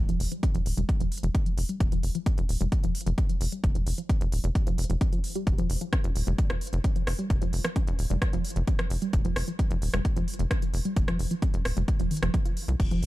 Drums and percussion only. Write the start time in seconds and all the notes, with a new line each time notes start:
0.09 closed hi-hat
0.20 open hi-hat
0.32 closed hi-hat
0.43 kick, closed hi-hat
0.55 closed hi-hat
0.66 open hi-hat
0.78 closed hi-hat
0.89 kick, closed hi-hat
1.00 closed hi-hat
1.12 open hi-hat
1.18 closed hi-hat
1.23 closed hi-hat
1.35 kick, closed hi-hat
1.46 closed hi-hat
1.58 open hi-hat
1.69 closed hi-hat
1.80 kick, closed hi-hat
1.92 closed hi-hat
2.03 open hi-hat
2.15 closed hi-hat
2.26 kick, closed hi-hat
2.38 closed hi-hat
2.49 open hi-hat
2.61 closed hi-hat
2.72 kick, closed hi-hat
2.84 closed hi-hat
2.95 open hi-hat
3.01 closed hi-hat
3.06 closed hi-hat
3.18 kick, closed hi-hat
3.29 closed hi-hat
3.41 open hi-hat
3.52 closed hi-hat
3.64 kick, closed hi-hat
3.75 closed hi-hat
3.87 open hi-hat
3.98 closed hi-hat
4.09 kick, closed hi-hat
4.21 closed hi-hat
4.32 open hi-hat
4.44 closed hi-hat
4.55 kick, closed hi-hat
4.67 closed hi-hat
4.78 open hi-hat
4.84 closed hi-hat
4.90 closed hi-hat
5.01 kick, closed hi-hat
5.13 closed hi-hat
5.24 open hi-hat
5.35 closed hi-hat
5.47 kick, closed hi-hat
5.58 closed hi-hat
5.70 open hi-hat
5.81 closed hi-hat
5.93 kick, cross-stick, closed hi-hat
6.04 closed hi-hat
6.16 open hi-hat
6.27 closed hi-hat
6.38 kick, closed hi-hat
6.50 cross-stick, closed hi-hat
6.61 open hi-hat
6.67 closed hi-hat
6.73 closed hi-hat
6.84 kick, closed hi-hat
6.96 closed hi-hat
7.07 cross-stick, open hi-hat
7.19 closed hi-hat
7.30 kick, closed hi-hat
7.42 closed hi-hat
7.53 open hi-hat
7.65 cross-stick, closed hi-hat
7.76 kick, closed hi-hat
7.87 closed hi-hat
7.99 open hi-hat
8.10 closed hi-hat
8.22 kick, cross-stick, closed hi-hat
8.33 closed hi-hat
8.45 open hi-hat
8.50 closed hi-hat
8.56 closed hi-hat
8.67 kick, closed hi-hat
8.79 cross-stick, closed hi-hat
8.90 open hi-hat
9.02 closed hi-hat
9.13 kick, closed hi-hat
9.25 closed hi-hat
9.36 cross-stick, open hi-hat
9.48 closed hi-hat
9.59 kick, closed hi-hat
9.71 closed hi-hat
9.82 open hi-hat
9.94 cross-stick, closed hi-hat
10.05 kick, closed hi-hat
10.16 closed hi-hat
10.28 open hi-hat
10.34 closed hi-hat
10.39 closed hi-hat
10.51 kick, cross-stick, closed hi-hat
10.62 closed hi-hat
10.74 open hi-hat
10.85 closed hi-hat
10.96 kick, closed hi-hat
11.08 cross-stick, closed hi-hat
11.19 open hi-hat
11.31 closed hi-hat
11.42 kick, closed hi-hat
11.54 closed hi-hat
11.65 cross-stick, open hi-hat
11.77 closed hi-hat
11.88 kick, closed hi-hat
12.00 closed hi-hat
12.11 open hi-hat
12.17 closed hi-hat
12.23 cross-stick, closed hi-hat
12.34 kick, closed hi-hat
12.46 closed hi-hat
12.57 open hi-hat
12.68 closed hi-hat
12.80 kick, closed hi-hat, crash
12.91 closed hi-hat
13.03 open hi-hat